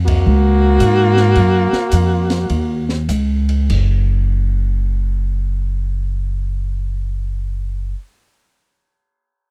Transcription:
0.00 0.24 F2 medium
0.05 3.05 A#3 medium
0.05 3.04 F#4 medium
0.05 kick medium
0.05 ride medium
0.26 0.79 C#2 medium
0.80 1.34 G#2 medium
0.80 hi-hat pedal medium
0.80 ride medium
1.17 snare soft
1.35 1.71 F#2 medium
1.35 ride medium
1.73 muted upright bass stroke soft
1.73 snare soft
1.91 2.48 F2 medium
1.91 hi-hat pedal medium
1.91 ride medium
2.30 snare medium
2.30 ride soft
2.50 3.08 D#2 medium
2.50 ride medium
2.89 snare soft
3.09 3.68 C#2 medium
3.09 hi-hat pedal medium
3.09 ride medium
3.49 ride soft
3.70 7.93 F#1 medium
3.70 kick soft
3.70 crash medium

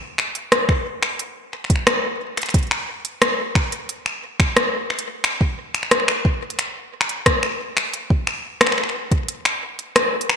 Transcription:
0.18 finger snap medium
0.35 closed hi-hat soft
0.52 cross-stick loud
0.52 closed hi-hat medium
0.69 finger snap soft
0.69 kick loud
1.03 finger snap medium
1.03 closed hi-hat soft
1.19 closed hi-hat medium
1.53 finger snap soft
1.64 finger snap soft
1.70 kick loud
1.70 closed hi-hat soft
1.76 finger snap soft
1.87 finger snap medium
1.87 cross-stick loud
1.87 closed hi-hat medium
2.37 finger snap soft
2.37 closed hi-hat soft
2.42 finger snap soft
2.42 closed hi-hat soft
2.46 finger snap soft
2.46 closed hi-hat soft
2.50 closed hi-hat soft
2.54 kick loud
2.54 closed hi-hat medium
2.59 closed hi-hat soft
2.63 closed hi-hat soft
2.67 closed hi-hat soft
2.71 finger snap medium
3.05 closed hi-hat soft
3.22 finger snap medium
3.22 cross-stick loud
3.22 closed hi-hat medium
3.55 finger snap medium
3.55 kick loud
3.72 closed hi-hat soft
3.89 closed hi-hat medium
4.06 finger snap soft
4.40 finger snap medium
4.40 kick loud
4.40 closed hi-hat soft
4.57 cross-stick loud
4.57 closed hi-hat medium
4.90 finger snap medium
4.99 closed hi-hat soft
5.24 finger snap medium
5.24 closed hi-hat medium
5.41 kick medium
5.75 finger snap soft
5.75 closed hi-hat soft
5.83 finger snap soft
5.91 finger snap soft
5.91 cross-stick loud
5.91 closed hi-hat medium
6.00 finger snap soft
6.08 finger snap medium
6.25 kick loud
6.50 closed hi-hat medium
6.59 finger snap medium
6.59 closed hi-hat medium
7.01 finger snap medium
7.09 closed hi-hat medium
7.26 kick loud
7.26 cross-stick loud
7.26 closed hi-hat medium
7.43 finger snap medium
7.77 finger snap medium
7.77 closed hi-hat medium
7.94 closed hi-hat medium
8.10 kick loud
8.27 finger snap medium
8.61 finger snap medium
8.61 cross-stick loud
8.61 closed hi-hat medium
8.67 finger snap medium
8.72 finger snap medium
8.78 finger snap soft
8.84 finger snap soft
8.89 finger snap soft
9.11 kick loud
9.11 closed hi-hat medium
9.28 closed hi-hat medium
9.45 finger snap medium
9.45 closed hi-hat soft
9.79 closed hi-hat medium
9.96 finger snap medium
9.96 cross-stick loud
9.96 closed hi-hat medium
10.21 closed hi-hat medium
10.29 finger snap medium

